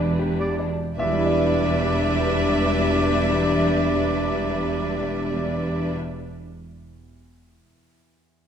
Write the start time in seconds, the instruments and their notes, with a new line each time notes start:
Already playing: double bass section E1, cello section E2, grand piano B2 G3 E4 D5, french horn section G3 D4, violin section D4, viola section B4
0.19 grand piano G4
0.39 clarinet G4, oboe D5
0.59 grand piano D5
0.97 double bass section E1, cello section E2, grand piano E2 E5, french horn section G3 D4, viola section G3 D4, clarinet G4, violin section B4 E5, oboe D5
1.05 grand piano E3
1.12 grand piano G3
1.19 grand piano E4
1.26 grand piano D5
1.33 grand piano E5